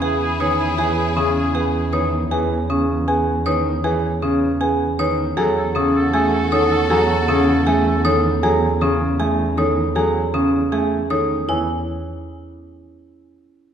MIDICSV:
0, 0, Header, 1, 8, 480
1, 0, Start_track
1, 0, Key_signature, 4, "major"
1, 0, Tempo, 382166
1, 988, Time_signature, 4, 2, 24, 8
1, 17256, End_track
2, 0, Start_track
2, 0, Title_t, "Celesta"
2, 0, Program_c, 0, 8
2, 28, Note_on_c, 0, 80, 74
2, 340, Note_off_c, 0, 80, 0
2, 509, Note_on_c, 0, 87, 101
2, 821, Note_off_c, 0, 87, 0
2, 990, Note_on_c, 0, 80, 85
2, 1301, Note_off_c, 0, 80, 0
2, 1467, Note_on_c, 0, 87, 88
2, 1780, Note_off_c, 0, 87, 0
2, 1943, Note_on_c, 0, 80, 82
2, 2259, Note_off_c, 0, 80, 0
2, 2426, Note_on_c, 0, 87, 106
2, 2740, Note_off_c, 0, 87, 0
2, 2906, Note_on_c, 0, 80, 84
2, 3220, Note_off_c, 0, 80, 0
2, 3389, Note_on_c, 0, 87, 90
2, 3701, Note_off_c, 0, 87, 0
2, 3866, Note_on_c, 0, 80, 87
2, 4180, Note_off_c, 0, 80, 0
2, 4350, Note_on_c, 0, 87, 112
2, 4661, Note_off_c, 0, 87, 0
2, 4826, Note_on_c, 0, 80, 89
2, 5140, Note_off_c, 0, 80, 0
2, 5306, Note_on_c, 0, 87, 85
2, 5620, Note_off_c, 0, 87, 0
2, 5789, Note_on_c, 0, 80, 89
2, 6101, Note_off_c, 0, 80, 0
2, 6272, Note_on_c, 0, 87, 106
2, 6582, Note_off_c, 0, 87, 0
2, 6752, Note_on_c, 0, 80, 86
2, 7061, Note_off_c, 0, 80, 0
2, 7231, Note_on_c, 0, 87, 104
2, 7541, Note_off_c, 0, 87, 0
2, 7710, Note_on_c, 0, 80, 94
2, 8021, Note_off_c, 0, 80, 0
2, 8191, Note_on_c, 0, 87, 117
2, 8501, Note_off_c, 0, 87, 0
2, 8674, Note_on_c, 0, 80, 91
2, 8983, Note_off_c, 0, 80, 0
2, 9150, Note_on_c, 0, 87, 90
2, 9461, Note_off_c, 0, 87, 0
2, 9629, Note_on_c, 0, 80, 92
2, 9941, Note_off_c, 0, 80, 0
2, 10108, Note_on_c, 0, 87, 127
2, 10420, Note_off_c, 0, 87, 0
2, 10589, Note_on_c, 0, 80, 101
2, 10901, Note_off_c, 0, 80, 0
2, 11072, Note_on_c, 0, 87, 99
2, 11382, Note_off_c, 0, 87, 0
2, 11551, Note_on_c, 0, 80, 100
2, 11861, Note_off_c, 0, 80, 0
2, 12032, Note_on_c, 0, 87, 111
2, 12342, Note_off_c, 0, 87, 0
2, 12511, Note_on_c, 0, 80, 88
2, 12821, Note_off_c, 0, 80, 0
2, 12989, Note_on_c, 0, 87, 91
2, 13300, Note_off_c, 0, 87, 0
2, 13467, Note_on_c, 0, 80, 89
2, 13780, Note_off_c, 0, 80, 0
2, 13950, Note_on_c, 0, 87, 113
2, 14261, Note_off_c, 0, 87, 0
2, 14434, Note_on_c, 0, 80, 98
2, 14654, Note_off_c, 0, 80, 0
2, 17256, End_track
3, 0, Start_track
3, 0, Title_t, "Marimba"
3, 0, Program_c, 1, 12
3, 24, Note_on_c, 1, 80, 83
3, 339, Note_off_c, 1, 80, 0
3, 502, Note_on_c, 1, 71, 93
3, 818, Note_off_c, 1, 71, 0
3, 987, Note_on_c, 1, 71, 100
3, 1300, Note_off_c, 1, 71, 0
3, 1467, Note_on_c, 1, 68, 79
3, 1780, Note_off_c, 1, 68, 0
3, 1947, Note_on_c, 1, 80, 84
3, 2260, Note_off_c, 1, 80, 0
3, 2420, Note_on_c, 1, 71, 97
3, 2737, Note_off_c, 1, 71, 0
3, 2906, Note_on_c, 1, 71, 96
3, 3220, Note_off_c, 1, 71, 0
3, 3391, Note_on_c, 1, 68, 70
3, 3701, Note_off_c, 1, 68, 0
3, 3871, Note_on_c, 1, 80, 91
3, 4181, Note_off_c, 1, 80, 0
3, 4348, Note_on_c, 1, 71, 103
3, 4660, Note_off_c, 1, 71, 0
3, 4824, Note_on_c, 1, 71, 100
3, 5139, Note_off_c, 1, 71, 0
3, 5305, Note_on_c, 1, 68, 82
3, 5619, Note_off_c, 1, 68, 0
3, 5790, Note_on_c, 1, 80, 94
3, 6101, Note_off_c, 1, 80, 0
3, 6272, Note_on_c, 1, 71, 101
3, 6582, Note_off_c, 1, 71, 0
3, 6750, Note_on_c, 1, 69, 107
3, 7061, Note_off_c, 1, 69, 0
3, 7233, Note_on_c, 1, 68, 88
3, 7542, Note_off_c, 1, 68, 0
3, 7713, Note_on_c, 1, 80, 98
3, 8022, Note_off_c, 1, 80, 0
3, 8188, Note_on_c, 1, 69, 107
3, 8500, Note_off_c, 1, 69, 0
3, 8669, Note_on_c, 1, 69, 114
3, 8981, Note_off_c, 1, 69, 0
3, 9155, Note_on_c, 1, 68, 93
3, 9463, Note_off_c, 1, 68, 0
3, 9633, Note_on_c, 1, 80, 104
3, 9942, Note_off_c, 1, 80, 0
3, 10112, Note_on_c, 1, 69, 110
3, 10422, Note_off_c, 1, 69, 0
3, 10585, Note_on_c, 1, 69, 103
3, 10899, Note_off_c, 1, 69, 0
3, 11069, Note_on_c, 1, 68, 93
3, 11381, Note_off_c, 1, 68, 0
3, 11556, Note_on_c, 1, 80, 92
3, 11863, Note_off_c, 1, 80, 0
3, 12026, Note_on_c, 1, 69, 103
3, 12340, Note_off_c, 1, 69, 0
3, 12503, Note_on_c, 1, 69, 106
3, 12819, Note_off_c, 1, 69, 0
3, 12988, Note_on_c, 1, 68, 79
3, 13300, Note_off_c, 1, 68, 0
3, 13469, Note_on_c, 1, 80, 90
3, 13781, Note_off_c, 1, 80, 0
3, 13948, Note_on_c, 1, 69, 93
3, 14260, Note_off_c, 1, 69, 0
3, 14428, Note_on_c, 1, 73, 89
3, 14651, Note_off_c, 1, 73, 0
3, 17256, End_track
4, 0, Start_track
4, 0, Title_t, "Oboe"
4, 0, Program_c, 2, 68
4, 28, Note_on_c, 2, 68, 85
4, 196, Note_off_c, 2, 68, 0
4, 270, Note_on_c, 2, 68, 95
4, 437, Note_off_c, 2, 68, 0
4, 508, Note_on_c, 2, 68, 82
4, 676, Note_off_c, 2, 68, 0
4, 749, Note_on_c, 2, 68, 91
4, 917, Note_off_c, 2, 68, 0
4, 987, Note_on_c, 2, 68, 84
4, 1155, Note_off_c, 2, 68, 0
4, 1228, Note_on_c, 2, 68, 75
4, 1396, Note_off_c, 2, 68, 0
4, 1464, Note_on_c, 2, 68, 79
4, 1634, Note_off_c, 2, 68, 0
4, 1703, Note_on_c, 2, 68, 81
4, 1873, Note_off_c, 2, 68, 0
4, 1945, Note_on_c, 2, 68, 75
4, 2114, Note_off_c, 2, 68, 0
4, 2185, Note_on_c, 2, 68, 56
4, 2354, Note_off_c, 2, 68, 0
4, 2431, Note_on_c, 2, 68, 43
4, 2598, Note_off_c, 2, 68, 0
4, 6747, Note_on_c, 2, 69, 53
4, 6916, Note_off_c, 2, 69, 0
4, 6986, Note_on_c, 2, 69, 63
4, 7155, Note_off_c, 2, 69, 0
4, 7229, Note_on_c, 2, 69, 66
4, 7396, Note_off_c, 2, 69, 0
4, 7471, Note_on_c, 2, 69, 90
4, 7638, Note_off_c, 2, 69, 0
4, 7709, Note_on_c, 2, 69, 95
4, 7877, Note_off_c, 2, 69, 0
4, 7946, Note_on_c, 2, 69, 98
4, 8115, Note_off_c, 2, 69, 0
4, 8182, Note_on_c, 2, 69, 97
4, 8352, Note_off_c, 2, 69, 0
4, 8423, Note_on_c, 2, 69, 109
4, 8593, Note_off_c, 2, 69, 0
4, 8663, Note_on_c, 2, 69, 103
4, 8833, Note_off_c, 2, 69, 0
4, 8905, Note_on_c, 2, 69, 88
4, 9074, Note_off_c, 2, 69, 0
4, 9141, Note_on_c, 2, 69, 102
4, 9312, Note_off_c, 2, 69, 0
4, 9388, Note_on_c, 2, 69, 93
4, 9556, Note_off_c, 2, 69, 0
4, 9628, Note_on_c, 2, 69, 81
4, 9796, Note_off_c, 2, 69, 0
4, 9874, Note_on_c, 2, 69, 67
4, 10040, Note_off_c, 2, 69, 0
4, 10107, Note_on_c, 2, 69, 50
4, 10275, Note_off_c, 2, 69, 0
4, 17256, End_track
5, 0, Start_track
5, 0, Title_t, "Marimba"
5, 0, Program_c, 3, 12
5, 22, Note_on_c, 3, 68, 83
5, 338, Note_off_c, 3, 68, 0
5, 505, Note_on_c, 3, 73, 89
5, 819, Note_off_c, 3, 73, 0
5, 984, Note_on_c, 3, 68, 78
5, 1299, Note_off_c, 3, 68, 0
5, 1467, Note_on_c, 3, 61, 80
5, 1780, Note_off_c, 3, 61, 0
5, 1946, Note_on_c, 3, 68, 75
5, 2259, Note_off_c, 3, 68, 0
5, 2424, Note_on_c, 3, 73, 87
5, 2739, Note_off_c, 3, 73, 0
5, 2907, Note_on_c, 3, 68, 77
5, 3220, Note_off_c, 3, 68, 0
5, 3389, Note_on_c, 3, 61, 81
5, 3701, Note_off_c, 3, 61, 0
5, 3867, Note_on_c, 3, 68, 83
5, 4180, Note_off_c, 3, 68, 0
5, 4344, Note_on_c, 3, 73, 95
5, 4659, Note_off_c, 3, 73, 0
5, 4827, Note_on_c, 3, 68, 86
5, 5140, Note_off_c, 3, 68, 0
5, 5305, Note_on_c, 3, 61, 77
5, 5619, Note_off_c, 3, 61, 0
5, 5788, Note_on_c, 3, 68, 90
5, 6100, Note_off_c, 3, 68, 0
5, 6269, Note_on_c, 3, 73, 103
5, 6580, Note_off_c, 3, 73, 0
5, 6745, Note_on_c, 3, 68, 85
5, 7059, Note_off_c, 3, 68, 0
5, 7224, Note_on_c, 3, 61, 91
5, 7539, Note_off_c, 3, 61, 0
5, 7705, Note_on_c, 3, 68, 92
5, 8019, Note_off_c, 3, 68, 0
5, 8189, Note_on_c, 3, 73, 108
5, 8501, Note_off_c, 3, 73, 0
5, 8667, Note_on_c, 3, 68, 86
5, 8980, Note_off_c, 3, 68, 0
5, 9147, Note_on_c, 3, 61, 96
5, 9460, Note_off_c, 3, 61, 0
5, 9628, Note_on_c, 3, 68, 94
5, 9940, Note_off_c, 3, 68, 0
5, 10108, Note_on_c, 3, 73, 100
5, 10420, Note_off_c, 3, 73, 0
5, 10593, Note_on_c, 3, 68, 96
5, 10902, Note_off_c, 3, 68, 0
5, 11074, Note_on_c, 3, 61, 90
5, 11382, Note_off_c, 3, 61, 0
5, 11550, Note_on_c, 3, 68, 81
5, 11861, Note_off_c, 3, 68, 0
5, 12032, Note_on_c, 3, 73, 98
5, 12341, Note_off_c, 3, 73, 0
5, 12509, Note_on_c, 3, 68, 88
5, 12820, Note_off_c, 3, 68, 0
5, 12988, Note_on_c, 3, 61, 88
5, 13300, Note_off_c, 3, 61, 0
5, 13467, Note_on_c, 3, 68, 87
5, 13780, Note_off_c, 3, 68, 0
5, 13946, Note_on_c, 3, 73, 93
5, 14259, Note_off_c, 3, 73, 0
5, 14428, Note_on_c, 3, 64, 91
5, 14651, Note_off_c, 3, 64, 0
5, 17256, End_track
6, 0, Start_track
6, 0, Title_t, "String section"
6, 0, Program_c, 4, 48
6, 0, Note_on_c, 4, 64, 91
6, 0, Note_on_c, 4, 68, 93
6, 2617, Note_off_c, 4, 68, 0
6, 2618, Note_off_c, 4, 64, 0
6, 6747, Note_on_c, 4, 66, 102
6, 6747, Note_on_c, 4, 69, 98
6, 10297, Note_off_c, 4, 66, 0
6, 10298, Note_off_c, 4, 69, 0
6, 17256, End_track
7, 0, Start_track
7, 0, Title_t, "Grand piano"
7, 0, Program_c, 5, 0
7, 19, Note_on_c, 5, 59, 79
7, 337, Note_off_c, 5, 59, 0
7, 499, Note_on_c, 5, 51, 103
7, 817, Note_off_c, 5, 51, 0
7, 983, Note_on_c, 5, 52, 90
7, 1298, Note_off_c, 5, 52, 0
7, 1463, Note_on_c, 5, 49, 86
7, 1778, Note_off_c, 5, 49, 0
7, 1944, Note_on_c, 5, 59, 78
7, 2259, Note_off_c, 5, 59, 0
7, 2428, Note_on_c, 5, 51, 94
7, 2740, Note_off_c, 5, 51, 0
7, 2906, Note_on_c, 5, 52, 91
7, 3220, Note_off_c, 5, 52, 0
7, 3386, Note_on_c, 5, 49, 80
7, 3700, Note_off_c, 5, 49, 0
7, 3866, Note_on_c, 5, 59, 82
7, 4179, Note_off_c, 5, 59, 0
7, 4345, Note_on_c, 5, 51, 108
7, 4659, Note_off_c, 5, 51, 0
7, 4825, Note_on_c, 5, 52, 103
7, 5139, Note_off_c, 5, 52, 0
7, 5310, Note_on_c, 5, 49, 92
7, 5621, Note_off_c, 5, 49, 0
7, 5788, Note_on_c, 5, 59, 85
7, 6100, Note_off_c, 5, 59, 0
7, 6267, Note_on_c, 5, 51, 108
7, 6580, Note_off_c, 5, 51, 0
7, 6744, Note_on_c, 5, 54, 112
7, 7059, Note_off_c, 5, 54, 0
7, 7229, Note_on_c, 5, 49, 94
7, 7541, Note_off_c, 5, 49, 0
7, 7706, Note_on_c, 5, 57, 90
7, 8019, Note_off_c, 5, 57, 0
7, 8191, Note_on_c, 5, 51, 112
7, 8501, Note_off_c, 5, 51, 0
7, 8670, Note_on_c, 5, 54, 116
7, 8981, Note_off_c, 5, 54, 0
7, 9149, Note_on_c, 5, 49, 105
7, 9461, Note_off_c, 5, 49, 0
7, 9631, Note_on_c, 5, 57, 96
7, 9941, Note_off_c, 5, 57, 0
7, 10111, Note_on_c, 5, 51, 113
7, 10421, Note_off_c, 5, 51, 0
7, 10589, Note_on_c, 5, 54, 103
7, 10900, Note_off_c, 5, 54, 0
7, 11073, Note_on_c, 5, 49, 99
7, 11382, Note_off_c, 5, 49, 0
7, 11549, Note_on_c, 5, 57, 82
7, 11861, Note_off_c, 5, 57, 0
7, 12027, Note_on_c, 5, 51, 108
7, 12340, Note_off_c, 5, 51, 0
7, 12504, Note_on_c, 5, 54, 100
7, 12819, Note_off_c, 5, 54, 0
7, 12986, Note_on_c, 5, 49, 90
7, 13299, Note_off_c, 5, 49, 0
7, 13470, Note_on_c, 5, 57, 82
7, 13781, Note_off_c, 5, 57, 0
7, 13946, Note_on_c, 5, 51, 100
7, 14260, Note_off_c, 5, 51, 0
7, 14424, Note_on_c, 5, 52, 84
7, 14649, Note_off_c, 5, 52, 0
7, 17256, End_track
8, 0, Start_track
8, 0, Title_t, "Double bass"
8, 0, Program_c, 6, 43
8, 0, Note_on_c, 6, 40, 75
8, 6600, Note_off_c, 6, 40, 0
8, 6745, Note_on_c, 6, 40, 86
8, 14281, Note_off_c, 6, 40, 0
8, 14429, Note_on_c, 6, 40, 73
8, 14652, Note_off_c, 6, 40, 0
8, 17256, End_track
0, 0, End_of_file